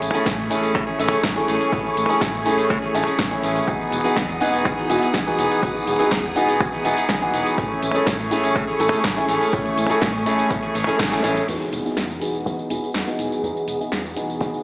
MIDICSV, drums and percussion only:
0, 0, Header, 1, 2, 480
1, 0, Start_track
1, 0, Key_signature, 4, "major"
1, 0, Tempo, 487805
1, 1698, Time_signature, 4, 2, 24, 8
1, 14397, End_track
2, 0, Start_track
2, 0, Title_t, "Drums"
2, 19, Note_on_c, 9, 46, 107
2, 26, Note_on_c, 9, 54, 70
2, 118, Note_off_c, 9, 46, 0
2, 125, Note_off_c, 9, 54, 0
2, 144, Note_on_c, 9, 42, 51
2, 151, Note_on_c, 9, 54, 33
2, 243, Note_off_c, 9, 42, 0
2, 250, Note_off_c, 9, 54, 0
2, 257, Note_on_c, 9, 36, 114
2, 257, Note_on_c, 9, 38, 121
2, 260, Note_on_c, 9, 42, 74
2, 267, Note_on_c, 9, 54, 41
2, 355, Note_off_c, 9, 36, 0
2, 355, Note_off_c, 9, 38, 0
2, 359, Note_off_c, 9, 42, 0
2, 366, Note_off_c, 9, 54, 0
2, 391, Note_on_c, 9, 54, 21
2, 489, Note_off_c, 9, 54, 0
2, 499, Note_on_c, 9, 46, 95
2, 506, Note_on_c, 9, 54, 73
2, 598, Note_off_c, 9, 46, 0
2, 605, Note_off_c, 9, 54, 0
2, 625, Note_on_c, 9, 42, 49
2, 632, Note_on_c, 9, 54, 30
2, 723, Note_off_c, 9, 42, 0
2, 730, Note_off_c, 9, 54, 0
2, 737, Note_on_c, 9, 36, 121
2, 738, Note_on_c, 9, 42, 72
2, 745, Note_on_c, 9, 54, 39
2, 835, Note_off_c, 9, 36, 0
2, 837, Note_off_c, 9, 42, 0
2, 844, Note_off_c, 9, 54, 0
2, 870, Note_on_c, 9, 54, 21
2, 969, Note_off_c, 9, 54, 0
2, 979, Note_on_c, 9, 46, 105
2, 986, Note_on_c, 9, 54, 72
2, 1077, Note_off_c, 9, 46, 0
2, 1084, Note_off_c, 9, 54, 0
2, 1102, Note_on_c, 9, 42, 51
2, 1109, Note_on_c, 9, 54, 32
2, 1201, Note_off_c, 9, 42, 0
2, 1208, Note_off_c, 9, 54, 0
2, 1215, Note_on_c, 9, 38, 120
2, 1217, Note_on_c, 9, 36, 106
2, 1218, Note_on_c, 9, 42, 76
2, 1225, Note_on_c, 9, 54, 41
2, 1313, Note_off_c, 9, 38, 0
2, 1315, Note_off_c, 9, 36, 0
2, 1316, Note_off_c, 9, 42, 0
2, 1323, Note_off_c, 9, 54, 0
2, 1351, Note_on_c, 9, 54, 20
2, 1449, Note_off_c, 9, 54, 0
2, 1460, Note_on_c, 9, 46, 94
2, 1467, Note_on_c, 9, 54, 75
2, 1558, Note_off_c, 9, 46, 0
2, 1565, Note_off_c, 9, 54, 0
2, 1584, Note_on_c, 9, 42, 52
2, 1591, Note_on_c, 9, 54, 31
2, 1682, Note_off_c, 9, 42, 0
2, 1689, Note_off_c, 9, 54, 0
2, 1697, Note_on_c, 9, 36, 122
2, 1699, Note_on_c, 9, 42, 77
2, 1706, Note_on_c, 9, 54, 43
2, 1796, Note_off_c, 9, 36, 0
2, 1797, Note_off_c, 9, 42, 0
2, 1804, Note_off_c, 9, 54, 0
2, 1831, Note_on_c, 9, 54, 21
2, 1929, Note_off_c, 9, 54, 0
2, 1940, Note_on_c, 9, 46, 103
2, 1947, Note_on_c, 9, 54, 72
2, 2038, Note_off_c, 9, 46, 0
2, 2045, Note_off_c, 9, 54, 0
2, 2064, Note_on_c, 9, 42, 49
2, 2071, Note_on_c, 9, 54, 32
2, 2162, Note_off_c, 9, 42, 0
2, 2169, Note_off_c, 9, 54, 0
2, 2176, Note_on_c, 9, 38, 112
2, 2177, Note_on_c, 9, 36, 109
2, 2179, Note_on_c, 9, 42, 72
2, 2186, Note_on_c, 9, 54, 41
2, 2274, Note_off_c, 9, 38, 0
2, 2275, Note_off_c, 9, 36, 0
2, 2278, Note_off_c, 9, 42, 0
2, 2285, Note_off_c, 9, 54, 0
2, 2311, Note_on_c, 9, 54, 21
2, 2409, Note_off_c, 9, 54, 0
2, 2418, Note_on_c, 9, 46, 91
2, 2425, Note_on_c, 9, 54, 76
2, 2517, Note_off_c, 9, 46, 0
2, 2524, Note_off_c, 9, 54, 0
2, 2543, Note_on_c, 9, 42, 48
2, 2550, Note_on_c, 9, 54, 30
2, 2641, Note_off_c, 9, 42, 0
2, 2648, Note_off_c, 9, 54, 0
2, 2657, Note_on_c, 9, 36, 116
2, 2660, Note_on_c, 9, 42, 73
2, 2667, Note_on_c, 9, 54, 41
2, 2756, Note_off_c, 9, 36, 0
2, 2758, Note_off_c, 9, 42, 0
2, 2765, Note_off_c, 9, 54, 0
2, 2791, Note_on_c, 9, 54, 21
2, 2889, Note_off_c, 9, 54, 0
2, 2899, Note_on_c, 9, 46, 103
2, 2906, Note_on_c, 9, 54, 73
2, 2997, Note_off_c, 9, 46, 0
2, 3004, Note_off_c, 9, 54, 0
2, 3024, Note_on_c, 9, 42, 49
2, 3031, Note_on_c, 9, 54, 31
2, 3122, Note_off_c, 9, 42, 0
2, 3129, Note_off_c, 9, 54, 0
2, 3136, Note_on_c, 9, 38, 113
2, 3138, Note_on_c, 9, 36, 106
2, 3139, Note_on_c, 9, 42, 74
2, 3146, Note_on_c, 9, 54, 43
2, 3234, Note_off_c, 9, 38, 0
2, 3236, Note_off_c, 9, 36, 0
2, 3237, Note_off_c, 9, 42, 0
2, 3244, Note_off_c, 9, 54, 0
2, 3271, Note_on_c, 9, 54, 21
2, 3370, Note_off_c, 9, 54, 0
2, 3380, Note_on_c, 9, 46, 96
2, 3387, Note_on_c, 9, 54, 74
2, 3478, Note_off_c, 9, 46, 0
2, 3485, Note_off_c, 9, 54, 0
2, 3504, Note_on_c, 9, 42, 49
2, 3511, Note_on_c, 9, 54, 31
2, 3603, Note_off_c, 9, 42, 0
2, 3610, Note_off_c, 9, 54, 0
2, 3618, Note_on_c, 9, 36, 120
2, 3620, Note_on_c, 9, 42, 75
2, 3627, Note_on_c, 9, 54, 45
2, 3716, Note_off_c, 9, 36, 0
2, 3718, Note_off_c, 9, 42, 0
2, 3725, Note_off_c, 9, 54, 0
2, 3752, Note_on_c, 9, 54, 22
2, 3850, Note_off_c, 9, 54, 0
2, 3859, Note_on_c, 9, 46, 100
2, 3866, Note_on_c, 9, 54, 75
2, 3957, Note_off_c, 9, 46, 0
2, 3964, Note_off_c, 9, 54, 0
2, 3984, Note_on_c, 9, 42, 51
2, 3991, Note_on_c, 9, 54, 35
2, 4083, Note_off_c, 9, 42, 0
2, 4090, Note_off_c, 9, 54, 0
2, 4097, Note_on_c, 9, 38, 112
2, 4098, Note_on_c, 9, 36, 105
2, 4101, Note_on_c, 9, 42, 74
2, 4108, Note_on_c, 9, 54, 43
2, 4196, Note_off_c, 9, 36, 0
2, 4196, Note_off_c, 9, 38, 0
2, 4199, Note_off_c, 9, 42, 0
2, 4206, Note_off_c, 9, 54, 0
2, 4231, Note_on_c, 9, 54, 22
2, 4330, Note_off_c, 9, 54, 0
2, 4340, Note_on_c, 9, 46, 92
2, 4347, Note_on_c, 9, 54, 77
2, 4438, Note_off_c, 9, 46, 0
2, 4445, Note_off_c, 9, 54, 0
2, 4465, Note_on_c, 9, 42, 48
2, 4472, Note_on_c, 9, 54, 32
2, 4563, Note_off_c, 9, 42, 0
2, 4570, Note_off_c, 9, 54, 0
2, 4577, Note_on_c, 9, 36, 114
2, 4580, Note_on_c, 9, 42, 72
2, 4587, Note_on_c, 9, 54, 42
2, 4676, Note_off_c, 9, 36, 0
2, 4678, Note_off_c, 9, 42, 0
2, 4685, Note_off_c, 9, 54, 0
2, 4711, Note_on_c, 9, 54, 21
2, 4810, Note_off_c, 9, 54, 0
2, 4820, Note_on_c, 9, 46, 100
2, 4827, Note_on_c, 9, 54, 77
2, 4918, Note_off_c, 9, 46, 0
2, 4925, Note_off_c, 9, 54, 0
2, 4944, Note_on_c, 9, 42, 50
2, 4951, Note_on_c, 9, 54, 33
2, 5042, Note_off_c, 9, 42, 0
2, 5049, Note_off_c, 9, 54, 0
2, 5056, Note_on_c, 9, 38, 110
2, 5057, Note_on_c, 9, 36, 102
2, 5059, Note_on_c, 9, 42, 73
2, 5066, Note_on_c, 9, 54, 44
2, 5154, Note_off_c, 9, 38, 0
2, 5156, Note_off_c, 9, 36, 0
2, 5158, Note_off_c, 9, 42, 0
2, 5165, Note_off_c, 9, 54, 0
2, 5191, Note_on_c, 9, 54, 22
2, 5290, Note_off_c, 9, 54, 0
2, 5301, Note_on_c, 9, 46, 92
2, 5307, Note_on_c, 9, 54, 80
2, 5399, Note_off_c, 9, 46, 0
2, 5406, Note_off_c, 9, 54, 0
2, 5424, Note_on_c, 9, 42, 50
2, 5431, Note_on_c, 9, 54, 33
2, 5523, Note_off_c, 9, 42, 0
2, 5530, Note_off_c, 9, 54, 0
2, 5537, Note_on_c, 9, 36, 111
2, 5539, Note_on_c, 9, 42, 79
2, 5546, Note_on_c, 9, 54, 47
2, 5636, Note_off_c, 9, 36, 0
2, 5638, Note_off_c, 9, 42, 0
2, 5645, Note_off_c, 9, 54, 0
2, 5670, Note_on_c, 9, 54, 23
2, 5769, Note_off_c, 9, 54, 0
2, 5779, Note_on_c, 9, 46, 97
2, 5786, Note_on_c, 9, 54, 78
2, 5877, Note_off_c, 9, 46, 0
2, 5884, Note_off_c, 9, 54, 0
2, 5903, Note_on_c, 9, 42, 51
2, 5910, Note_on_c, 9, 54, 34
2, 6002, Note_off_c, 9, 42, 0
2, 6009, Note_off_c, 9, 54, 0
2, 6015, Note_on_c, 9, 38, 111
2, 6018, Note_on_c, 9, 36, 104
2, 6018, Note_on_c, 9, 42, 75
2, 6025, Note_on_c, 9, 54, 47
2, 6113, Note_off_c, 9, 38, 0
2, 6116, Note_off_c, 9, 36, 0
2, 6117, Note_off_c, 9, 42, 0
2, 6124, Note_off_c, 9, 54, 0
2, 6151, Note_on_c, 9, 54, 23
2, 6249, Note_off_c, 9, 54, 0
2, 6259, Note_on_c, 9, 46, 90
2, 6266, Note_on_c, 9, 54, 83
2, 6357, Note_off_c, 9, 46, 0
2, 6364, Note_off_c, 9, 54, 0
2, 6382, Note_on_c, 9, 42, 50
2, 6389, Note_on_c, 9, 54, 33
2, 6481, Note_off_c, 9, 42, 0
2, 6488, Note_off_c, 9, 54, 0
2, 6498, Note_on_c, 9, 36, 113
2, 6498, Note_on_c, 9, 42, 74
2, 6505, Note_on_c, 9, 54, 43
2, 6596, Note_off_c, 9, 36, 0
2, 6597, Note_off_c, 9, 42, 0
2, 6604, Note_off_c, 9, 54, 0
2, 6630, Note_on_c, 9, 54, 23
2, 6728, Note_off_c, 9, 54, 0
2, 6737, Note_on_c, 9, 46, 101
2, 6744, Note_on_c, 9, 54, 76
2, 6836, Note_off_c, 9, 46, 0
2, 6843, Note_off_c, 9, 54, 0
2, 6861, Note_on_c, 9, 42, 53
2, 6868, Note_on_c, 9, 54, 35
2, 6960, Note_off_c, 9, 42, 0
2, 6967, Note_off_c, 9, 54, 0
2, 6975, Note_on_c, 9, 38, 116
2, 6978, Note_on_c, 9, 36, 98
2, 6978, Note_on_c, 9, 42, 77
2, 6985, Note_on_c, 9, 54, 46
2, 7073, Note_off_c, 9, 38, 0
2, 7076, Note_off_c, 9, 36, 0
2, 7076, Note_off_c, 9, 42, 0
2, 7083, Note_off_c, 9, 54, 0
2, 7111, Note_on_c, 9, 54, 23
2, 7209, Note_off_c, 9, 54, 0
2, 7220, Note_on_c, 9, 46, 89
2, 7227, Note_on_c, 9, 54, 78
2, 7318, Note_off_c, 9, 46, 0
2, 7325, Note_off_c, 9, 54, 0
2, 7344, Note_on_c, 9, 42, 52
2, 7351, Note_on_c, 9, 54, 34
2, 7443, Note_off_c, 9, 42, 0
2, 7450, Note_off_c, 9, 54, 0
2, 7458, Note_on_c, 9, 36, 111
2, 7459, Note_on_c, 9, 42, 82
2, 7466, Note_on_c, 9, 54, 47
2, 7556, Note_off_c, 9, 36, 0
2, 7558, Note_off_c, 9, 42, 0
2, 7565, Note_off_c, 9, 54, 0
2, 7591, Note_on_c, 9, 54, 23
2, 7690, Note_off_c, 9, 54, 0
2, 7700, Note_on_c, 9, 46, 100
2, 7706, Note_on_c, 9, 54, 80
2, 7798, Note_off_c, 9, 46, 0
2, 7805, Note_off_c, 9, 54, 0
2, 7823, Note_on_c, 9, 42, 55
2, 7830, Note_on_c, 9, 54, 37
2, 7921, Note_off_c, 9, 42, 0
2, 7928, Note_off_c, 9, 54, 0
2, 7936, Note_on_c, 9, 38, 118
2, 7938, Note_on_c, 9, 36, 101
2, 7940, Note_on_c, 9, 42, 80
2, 7947, Note_on_c, 9, 54, 47
2, 8035, Note_off_c, 9, 38, 0
2, 8037, Note_off_c, 9, 36, 0
2, 8038, Note_off_c, 9, 42, 0
2, 8045, Note_off_c, 9, 54, 0
2, 8070, Note_on_c, 9, 54, 23
2, 8168, Note_off_c, 9, 54, 0
2, 8179, Note_on_c, 9, 46, 88
2, 8186, Note_on_c, 9, 54, 80
2, 8278, Note_off_c, 9, 46, 0
2, 8284, Note_off_c, 9, 54, 0
2, 8303, Note_on_c, 9, 42, 52
2, 8310, Note_on_c, 9, 54, 34
2, 8401, Note_off_c, 9, 42, 0
2, 8409, Note_off_c, 9, 54, 0
2, 8418, Note_on_c, 9, 36, 107
2, 8419, Note_on_c, 9, 42, 78
2, 8426, Note_on_c, 9, 54, 46
2, 8517, Note_off_c, 9, 36, 0
2, 8517, Note_off_c, 9, 42, 0
2, 8524, Note_off_c, 9, 54, 0
2, 8551, Note_on_c, 9, 54, 23
2, 8649, Note_off_c, 9, 54, 0
2, 8658, Note_on_c, 9, 46, 96
2, 8665, Note_on_c, 9, 54, 80
2, 8757, Note_off_c, 9, 46, 0
2, 8764, Note_off_c, 9, 54, 0
2, 8782, Note_on_c, 9, 42, 54
2, 8789, Note_on_c, 9, 54, 36
2, 8881, Note_off_c, 9, 42, 0
2, 8888, Note_off_c, 9, 54, 0
2, 8894, Note_on_c, 9, 38, 118
2, 8898, Note_on_c, 9, 36, 97
2, 8898, Note_on_c, 9, 42, 81
2, 8905, Note_on_c, 9, 54, 47
2, 8993, Note_off_c, 9, 38, 0
2, 8996, Note_off_c, 9, 36, 0
2, 8996, Note_off_c, 9, 42, 0
2, 9003, Note_off_c, 9, 54, 0
2, 9029, Note_on_c, 9, 54, 23
2, 9127, Note_off_c, 9, 54, 0
2, 9137, Note_on_c, 9, 46, 89
2, 9144, Note_on_c, 9, 54, 84
2, 9236, Note_off_c, 9, 46, 0
2, 9243, Note_off_c, 9, 54, 0
2, 9262, Note_on_c, 9, 42, 55
2, 9269, Note_on_c, 9, 54, 34
2, 9360, Note_off_c, 9, 42, 0
2, 9367, Note_off_c, 9, 54, 0
2, 9378, Note_on_c, 9, 36, 114
2, 9378, Note_on_c, 9, 42, 83
2, 9385, Note_on_c, 9, 54, 47
2, 9476, Note_off_c, 9, 36, 0
2, 9476, Note_off_c, 9, 42, 0
2, 9483, Note_off_c, 9, 54, 0
2, 9503, Note_on_c, 9, 42, 40
2, 9510, Note_on_c, 9, 54, 23
2, 9601, Note_off_c, 9, 42, 0
2, 9608, Note_off_c, 9, 54, 0
2, 9619, Note_on_c, 9, 46, 99
2, 9626, Note_on_c, 9, 54, 77
2, 9717, Note_off_c, 9, 46, 0
2, 9724, Note_off_c, 9, 54, 0
2, 9743, Note_on_c, 9, 42, 54
2, 9750, Note_on_c, 9, 54, 35
2, 9842, Note_off_c, 9, 42, 0
2, 9849, Note_off_c, 9, 54, 0
2, 9856, Note_on_c, 9, 38, 121
2, 9858, Note_on_c, 9, 36, 104
2, 9859, Note_on_c, 9, 42, 85
2, 9866, Note_on_c, 9, 54, 47
2, 9954, Note_off_c, 9, 38, 0
2, 9956, Note_off_c, 9, 36, 0
2, 9958, Note_off_c, 9, 42, 0
2, 9965, Note_off_c, 9, 54, 0
2, 9983, Note_on_c, 9, 42, 39
2, 9990, Note_on_c, 9, 54, 23
2, 10082, Note_off_c, 9, 42, 0
2, 10089, Note_off_c, 9, 54, 0
2, 10099, Note_on_c, 9, 46, 88
2, 10106, Note_on_c, 9, 54, 81
2, 10197, Note_off_c, 9, 46, 0
2, 10204, Note_off_c, 9, 54, 0
2, 10224, Note_on_c, 9, 42, 54
2, 10231, Note_on_c, 9, 54, 33
2, 10322, Note_off_c, 9, 42, 0
2, 10329, Note_off_c, 9, 54, 0
2, 10336, Note_on_c, 9, 38, 36
2, 10337, Note_on_c, 9, 36, 113
2, 10339, Note_on_c, 9, 42, 81
2, 10346, Note_on_c, 9, 54, 44
2, 10434, Note_off_c, 9, 38, 0
2, 10436, Note_off_c, 9, 36, 0
2, 10438, Note_off_c, 9, 42, 0
2, 10445, Note_off_c, 9, 54, 0
2, 10463, Note_on_c, 9, 42, 39
2, 10470, Note_on_c, 9, 54, 22
2, 10561, Note_off_c, 9, 42, 0
2, 10568, Note_off_c, 9, 54, 0
2, 10579, Note_on_c, 9, 46, 96
2, 10586, Note_on_c, 9, 54, 79
2, 10677, Note_off_c, 9, 46, 0
2, 10684, Note_off_c, 9, 54, 0
2, 10704, Note_on_c, 9, 42, 54
2, 10711, Note_on_c, 9, 54, 36
2, 10803, Note_off_c, 9, 42, 0
2, 10810, Note_off_c, 9, 54, 0
2, 10817, Note_on_c, 9, 36, 101
2, 10817, Note_on_c, 9, 38, 121
2, 10820, Note_on_c, 9, 42, 86
2, 10827, Note_on_c, 9, 54, 46
2, 10915, Note_off_c, 9, 36, 0
2, 10915, Note_off_c, 9, 38, 0
2, 10919, Note_off_c, 9, 42, 0
2, 10926, Note_off_c, 9, 54, 0
2, 10944, Note_on_c, 9, 42, 39
2, 10951, Note_on_c, 9, 54, 23
2, 11043, Note_off_c, 9, 42, 0
2, 11050, Note_off_c, 9, 54, 0
2, 11060, Note_on_c, 9, 46, 92
2, 11067, Note_on_c, 9, 54, 81
2, 11158, Note_off_c, 9, 46, 0
2, 11165, Note_off_c, 9, 54, 0
2, 11185, Note_on_c, 9, 42, 54
2, 11192, Note_on_c, 9, 54, 34
2, 11284, Note_off_c, 9, 42, 0
2, 11291, Note_off_c, 9, 54, 0
2, 11300, Note_on_c, 9, 49, 78
2, 11307, Note_on_c, 9, 54, 41
2, 11398, Note_off_c, 9, 49, 0
2, 11405, Note_off_c, 9, 54, 0
2, 11431, Note_on_c, 9, 54, 20
2, 11529, Note_off_c, 9, 54, 0
2, 11539, Note_on_c, 9, 46, 90
2, 11546, Note_on_c, 9, 54, 69
2, 11638, Note_off_c, 9, 46, 0
2, 11645, Note_off_c, 9, 54, 0
2, 11670, Note_on_c, 9, 54, 30
2, 11769, Note_off_c, 9, 54, 0
2, 11777, Note_on_c, 9, 38, 110
2, 11787, Note_on_c, 9, 54, 40
2, 11875, Note_off_c, 9, 38, 0
2, 11885, Note_off_c, 9, 54, 0
2, 11911, Note_on_c, 9, 54, 20
2, 12009, Note_off_c, 9, 54, 0
2, 12020, Note_on_c, 9, 46, 81
2, 12027, Note_on_c, 9, 54, 68
2, 12118, Note_off_c, 9, 46, 0
2, 12125, Note_off_c, 9, 54, 0
2, 12151, Note_on_c, 9, 54, 28
2, 12249, Note_off_c, 9, 54, 0
2, 12267, Note_on_c, 9, 54, 39
2, 12365, Note_off_c, 9, 54, 0
2, 12391, Note_on_c, 9, 54, 19
2, 12489, Note_off_c, 9, 54, 0
2, 12500, Note_on_c, 9, 46, 93
2, 12507, Note_on_c, 9, 54, 67
2, 12598, Note_off_c, 9, 46, 0
2, 12605, Note_off_c, 9, 54, 0
2, 12631, Note_on_c, 9, 54, 31
2, 12729, Note_off_c, 9, 54, 0
2, 12736, Note_on_c, 9, 38, 110
2, 12747, Note_on_c, 9, 54, 41
2, 12835, Note_off_c, 9, 38, 0
2, 12845, Note_off_c, 9, 54, 0
2, 12870, Note_on_c, 9, 54, 20
2, 12969, Note_off_c, 9, 54, 0
2, 12979, Note_on_c, 9, 46, 82
2, 12986, Note_on_c, 9, 54, 70
2, 13077, Note_off_c, 9, 46, 0
2, 13084, Note_off_c, 9, 54, 0
2, 13109, Note_on_c, 9, 54, 30
2, 13208, Note_off_c, 9, 54, 0
2, 13226, Note_on_c, 9, 54, 40
2, 13324, Note_off_c, 9, 54, 0
2, 13350, Note_on_c, 9, 54, 20
2, 13449, Note_off_c, 9, 54, 0
2, 13458, Note_on_c, 9, 46, 95
2, 13465, Note_on_c, 9, 54, 66
2, 13556, Note_off_c, 9, 46, 0
2, 13563, Note_off_c, 9, 54, 0
2, 13590, Note_on_c, 9, 54, 30
2, 13688, Note_off_c, 9, 54, 0
2, 13696, Note_on_c, 9, 38, 109
2, 13706, Note_on_c, 9, 54, 39
2, 13794, Note_off_c, 9, 38, 0
2, 13805, Note_off_c, 9, 54, 0
2, 13830, Note_on_c, 9, 54, 20
2, 13928, Note_off_c, 9, 54, 0
2, 13938, Note_on_c, 9, 46, 88
2, 13945, Note_on_c, 9, 54, 68
2, 14037, Note_off_c, 9, 46, 0
2, 14044, Note_off_c, 9, 54, 0
2, 14070, Note_on_c, 9, 54, 28
2, 14169, Note_off_c, 9, 54, 0
2, 14175, Note_on_c, 9, 38, 34
2, 14185, Note_on_c, 9, 54, 36
2, 14273, Note_off_c, 9, 38, 0
2, 14284, Note_off_c, 9, 54, 0
2, 14309, Note_on_c, 9, 54, 19
2, 14397, Note_off_c, 9, 54, 0
2, 14397, End_track
0, 0, End_of_file